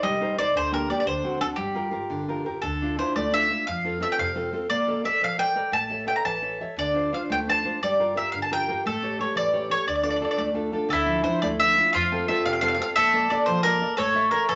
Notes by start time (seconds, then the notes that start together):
Already playing: D#4 A#4 C5
0.03 C2 G3 D#5
0.21 D#4 A#4 C5
0.38 C2 D#4 A#4 C5 D5
0.55 D2 D3 C5
0.72 A#3 D4 G4 A#4
0.89 A#3 D4 G4 D5
1.00 D5
1.06 D2 D3 C5
1.23 C4 D4 F#4
1.40 D2 C4 D4 F#4 A4
1.56 G1 G3 G4
1.74 F4 G4 A#4
1.91 F4 G4 A#4
2.10 G1 D3
2.28 F4 G4 A#4
2.45 G1 F4 G4 A#4
2.62 D2 D3 A4
2.82 D4 E4 F4
2.98 D4 E4 F4 C5
3.16 D2 A3 D5
3.32 D4 E4 F4 E5
3.50 D4 E4 F4
3.67 F2 F3 F5
3.84 C4 F4 A4
4.00 C4 F4 A4 E5
4.12 G5
4.18 F2 C3 F5
4.35 C4 F4 A4
4.53 C4 F4 A4
4.70 A#1 A#3 D5
4.88 A4 A#4 D5
5.04 A4 A#4 D5 E5
5.21 A#1 F3 F5
5.38 A4 A#4 D5 G5
5.55 A4 A#4 D5
5.72 A1 A3 A5
5.90 A4 C#5 E5
6.06 A4 C#5 E5 G5
6.16 A#5
6.25 A1 E3 A5
6.42 A4 C#5 E5
6.61 A4 C#5 E5
6.76 D2 D3 D5
6.94 D4 F4 C5
7.12 D4 F4 C5 F5
7.30 D2 A3 G5
7.47 D4 F4 C5 A5
7.64 D4 F4 C5
7.82 G1 G3 D5
7.99 F4 G4 A#4
8.16 F4 G4 A#4 E5
8.32 G1 D3 F5
8.42 A5
8.51 F4 G4 A#4 G5
8.68 F4 G4 A#4
8.86 A1 A3 A4
9.02 G4 A4 C#5
9.19 G4 A4 C#5
9.35 A1 E3 D5
9.53 G4 A4 C#5
9.70 G4 A4 C#5
9.87 D2 D3 D5
9.95 D5
10.03 D4 F4 A4 D5
10.10 D5
10.16 D5
10.20 D4 F4 A4
10.25 D5
10.31 D5
10.38 D2 A3 D5
10.54 D4 F4 A4
10.72 D4 F4 A4
10.89 D2 D3 A4
10.93 E4
11.06 F3 D4 E4
11.23 F3 D4 E4 C5
11.42 D2 A3 D5
11.60 F3 D4 E4 E5
11.78 D4 E4 F4
11.93 F2 F3 F4 F5
12.12 C4 F4 A4
12.28 C4 F4 A4 E5
12.45 F2 C3 F5
12.53 F5
12.61 C4 F4 A4 F5
12.68 F5
12.75 F5
12.79 C4 F4 A4 F5
12.96 A#1 A#3 A4 E5
13.13 A#3 A4 D5
13.30 A#3 A4 D5
13.46 A#1 F3 C5
13.63 A#3 F4 A#4 D5
13.81 A4 A#4 D5
13.97 A1 A3 A4 C#5
14.14 A4 C#5 E5
14.31 A4 A#4 C#5 E5
14.49 A1 E3 A4